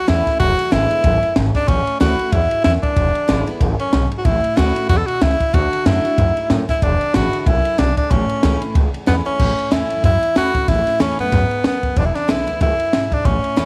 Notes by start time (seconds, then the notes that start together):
Already playing: E2
0.07 E2 E3 A3 C#4 E4, snare, ride
0.26 C#4 E4, muted upright bass stroke, kick, snare, ride
0.40 E1 E2 F#4, kick, ride
0.59 muted upright bass stroke, ride
0.71 G#1 D3 G#3 B3 E4, snare, ride
0.91 muted upright bass stroke, ride
1.04 G#1 F#2, kick, ride
1.23 ride
1.36 G#1 G#2, snare, ride
1.55 D4, muted upright bass stroke, kick, snare, ride
1.68 A1 A2 C#4, kick, ride
1.87 muted upright bass stroke, ride
2.00 D2 E3 A3 C#4 E4 F#4, snare, ride
2.18 C#4 E4, ride
2.32 E2 G#2 E4, kick, ride
2.51 muted upright bass stroke, ride
2.64 E2 F#2 E4, snare, ride
2.83 D4, kick, ride
2.96 E1 E2, kick, ride
3.15 muted upright bass stroke, ride
3.28 G#1 D3 G#3 B3 E4, snare, ride
3.46 B3 E4, ride
3.61 G#1 F#2, kick, ride
3.80 C#4, muted upright bass stroke, ride
3.93 B1 G#2, snare, ride
4.12 ride
4.18 F#4
4.25 A1 A2 E4, kick, ride
4.44 muted upright bass stroke, ride
4.57 D2 E3 A3 C#4 E4 F#4, snare, ride
4.75 C#4 E4, ride
4.89 E2 B2 F#4, kick, ride
4.97 A4
5.06 F#4, ride
5.21 C#2 C#3 E4, snare, ride
5.40 muted upright bass stroke, kick, ride
5.54 D2 D3 F#4, kick, ride
5.72 muted upright bass stroke, ride
5.86 F#2 D3 A3 D4 E4 F#4, snare, ride
6.05 D4 F#4, muted upright bass stroke, ride
6.18 F#2 G#2, kick, ride
6.37 muted upright bass stroke, ride
6.50 F#2 A2, snare, ride
6.69 E4, muted upright bass stroke, kick, snare, ride
6.82 E1 E2 D4, kick, ride
7.01 muted upright bass stroke, ride
7.14 A1 D3 G#3 B3 E4 F#4, snare, ride
7.33 muted upright bass stroke, ride
7.40 F#4
7.46 B1 F#2 E4, kick, ride
7.65 ride
7.78 B1 G#2 D4, snare, ride
7.97 D4, kick, ride
8.11 A1 A2 C#4, kick, ride
8.29 muted upright bass stroke, ride
8.43 C#2 E3 A3 C#4 E4, snare, ride
8.62 C#4 E4, muted upright bass stroke, ride
8.75 C#2 E2, kick, ride
8.94 muted upright bass stroke, ride
9.06 E2 E3 A3 B3 C#4 E4, snare, ride
9.25 C#4 E4, ride
9.39 A1 A2, kick, crash
9.58 ride
9.71 E2 E3 A3 C#4 E4, snare, ride
9.90 F#2, ride
10.04 E2 F#2 E4, kick, ride
10.23 muted upright bass stroke, ride
10.35 E2 E3 A3 C#4 E4 F#4, snare, ride
10.54 C#2 C#4 E4, kick, ride
10.68 A1 A2 E4, kick, snare, ride
10.87 muted upright bass stroke, snare, ride
11.00 E2 E3 A3 C#4 E4, snare, ride
11.19 F#2 B3 C#4 E4, ride
11.32 F#2 G#2, kick, snare, ride
11.51 muted upright bass stroke, ride
11.64 E2 F#2 B3, snare, ride
11.83 F#1, kick, ride
11.96 E1 E2 D4, kick, ride
12.05 E4
12.15 D4, muted upright bass stroke, snare, ride
12.28 B1 D3 G#3 B3 E4, snare, ride
12.47 D2 B3 E4, ride
12.61 C#2 F#2 E4, kick, ride
12.80 muted upright bass stroke, ride
12.93 B1 G#2, snare, ride
13.12 B1 D4, kick, ride
13.25 A1 A2 C#4, kick, ride
13.44 muted upright bass stroke, ride
13.56 E2 E3 A3 C#4 E4, snare, ride